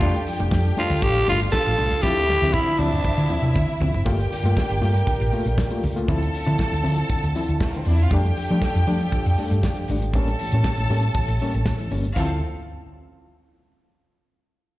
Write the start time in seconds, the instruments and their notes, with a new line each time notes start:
Already playing: tenor saxophone F4
0.00 fingered electric bass F1, french horn section F3 D4 G4 A4, reed electric piano G3 A3 D4, string section G4 G5, kick, closed hi-hat, tambourine
0.14 closed hi-hat
0.27 reed electric piano F3, open hi-hat, tambourine
0.40 fingered electric bass F1, reed electric piano G3 A3 D4, closed hi-hat
0.51 fingered electric bass F2, reed electric piano A3 D4, kick, snare, tambourine
0.65 reed electric piano F3, closed hi-hat
0.77 reed electric piano G3 A3 D4, tenor saxophone F4, open hi-hat, tambourine
0.90 fingered electric bass D2, closed hi-hat
1.02 fingered electric bass A1, reed electric piano F3, string section F4 F5, tenor saxophone G4, kick, closed hi-hat
1.16 closed hi-hat
1.27 fingered electric bass G1, reed electric piano G3 A3 D4, tenor saxophone F4, open hi-hat, tambourine
1.42 reed electric piano A3 D4, closed hi-hat
1.52 reed electric piano A3 D4, tenor saxophone A4, kick, snare, tambourine
1.65 fingered electric bass A1, reed electric piano F3, closed hi-hat
1.77 fingered electric bass C2, reed electric piano G3 A3 D4, open hi-hat, tambourine
1.91 fingered electric bass C#2, closed hi-hat
2.02 fingered electric bass D2, french horn section D3 F3 C4 E4, reed electric piano F3 C4 E4, string section E4 E5, tenor saxophone G4, kick, snare, tambourine
2.28 reed electric piano D3, snare, tambourine
2.42 fingered electric bass D2, reed electric piano F3 C4 E4, snare
2.53 reed electric piano C4 E4, tenor saxophone E4, kick, high tom, tambourine
2.68 reed electric piano D3
2.79 fingered electric bass D2, reed electric piano F3 C4 E4, tenor saxophone D4, high tom, tambourine
2.93 mid tom
3.05 reed electric piano D3, muted fingered electric bass stroke, kick, mid tom, tambourine
3.18 fingered electric bass D3
3.29 reed electric piano F3 C4 E4, mid tom, tambourine
3.42 fingered electric bass C3, reed electric piano C4 E4, mid tom
3.54 fingered electric bass D3, reed electric piano C4 E4, kick, mid tom, tambourine
3.70 reed electric piano D3
3.80 fingered electric bass D2, reed electric piano F3 C4 E4, floor tom, tambourine
3.94 fingered electric bass F#1, floor tom
4.05 fingered electric bass G1, french horn section G3 D4 F4 A#4, reed electric piano A3 A#3 F4, string section G4 G5, kick, closed hi-hat, tambourine
4.20 closed hi-hat
4.32 reed electric piano G2 D3, open hi-hat, tambourine
4.44 fingered electric bass G2, reed electric piano A3 A#3 F4, closed hi-hat
4.57 reed electric piano A#3 F4, kick, snare, tambourine
4.70 fingered electric bass G1, reed electric piano G2 D3, closed hi-hat
4.81 fingered electric bass G2, reed electric piano A3 A#3 F4, open hi-hat, tambourine
4.96 closed hi-hat
5.07 reed electric piano G2 D3, kick, closed hi-hat, tambourine
5.20 fingered electric bass A1, closed hi-hat
5.32 reed electric piano A3 A#3 F4, open hi-hat, tambourine
5.46 fingered electric bass A#1, reed electric piano A#3 F4, closed hi-hat
5.58 kick, snare, tambourine
5.71 reed electric piano A3 A#3 F4, closed hi-hat
5.83 fingered electric bass C#2, reed electric piano G2 D3, open hi-hat
5.96 reed electric piano A3 A#3 F4, closed hi-hat
6.08 fingered electric bass D2, french horn section D3 C4 E4, reed electric piano F3 C4 E4, string section A4 A5, kick, closed hi-hat, tambourine
6.23 closed hi-hat
6.33 reed electric piano D3, open hi-hat, tambourine
6.46 fingered electric bass D3, reed electric piano F3 C4 E4, closed hi-hat
6.57 reed electric piano C4 E4, kick, snare, tambourine
6.70 fingered electric bass D2, reed electric piano D3, closed hi-hat
6.84 fingered electric bass D3, reed electric piano F3 C4 E4, open hi-hat, tambourine
6.98 closed hi-hat
7.09 reed electric piano D3, kick, closed hi-hat, tambourine
7.23 fingered electric bass D2, closed hi-hat
7.35 reed electric piano F3 C4 E4, open hi-hat, tambourine
7.49 fingered electric bass D2, reed electric piano C4 E4, closed hi-hat
7.60 string section A3 A4, reed electric piano C4 E4, kick, snare, tambourine
7.69 string section A#3 A#4
7.74 reed electric piano D3, string section C4 C5, closed hi-hat
7.85 fingered electric bass E2, reed electric piano F3 C4 E4, string section D4 D5, open hi-hat
7.93 string section E4 E5
7.99 string section F4 F5, closed hi-hat
8.10 fingered electric bass F2, french horn section F3 D4 G4 A4, reed electric piano G3 A3 D4, string section G4 G5, kick, closed hi-hat, tambourine
8.25 closed hi-hat
8.37 reed electric piano F3, open hi-hat, tambourine
8.50 fingered electric bass F3, reed electric piano G3 A3 D4, closed hi-hat
8.61 reed electric piano A3 D4, kick, snare, tambourine
8.75 fingered electric bass F2, reed electric piano F3, closed hi-hat
8.87 fingered electric bass F3, reed electric piano G3 A3 D4, open hi-hat, tambourine
9.00 closed hi-hat
9.12 reed electric piano F3, kick, closed hi-hat, tambourine
9.26 fingered electric bass F2, closed hi-hat
9.38 reed electric piano G3 A3 D4, open hi-hat, tambourine
9.51 fingered electric bass G2, reed electric piano A3 D4, closed hi-hat
9.63 reed electric piano A3 D4, kick, snare, tambourine
9.76 reed electric piano F3, closed hi-hat
9.88 fingered electric bass G#1, reed electric piano G3 A3 D4, open hi-hat
10.02 closed hi-hat
10.13 fingered electric bass A1, reed electric piano G3 A#3 C#4, french horn section A3 C#4, string section A4 A5, kick, closed hi-hat, tambourine
10.28 closed hi-hat
10.39 reed electric piano A2 E3, open hi-hat, tambourine
10.52 fingered electric bass A2, reed electric piano G3 A#3 C#4, closed hi-hat
10.64 reed electric piano A#3 C#4, kick, snare, tambourine
10.77 fingered electric bass A1, reed electric piano A2 E3, closed hi-hat
10.89 fingered electric bass A2, reed electric piano G3 A#3 C#4, open hi-hat, tambourine
11.02 closed hi-hat
11.15 reed electric piano A2 E3, kick, closed hi-hat, tambourine
11.28 fingered electric bass A1, closed hi-hat
11.40 reed electric piano G3 A#3 C#4, open hi-hat, tambourine
11.54 fingered electric bass A1, reed electric piano A#3 C#4, closed hi-hat
11.66 reed electric piano A#3 C#4, kick, snare, tambourine
11.79 reed electric piano A2 E3, closed hi-hat
11.90 fingered electric bass G1, reed electric piano G3 A#3 C#4, open hi-hat
12.04 closed hi-hat
12.16 fingered electric bass D2, french horn section D3 C4 E4 F4, reed electric piano F3 C4 E4, string section C4 A4 F5, kick, tambourine, splash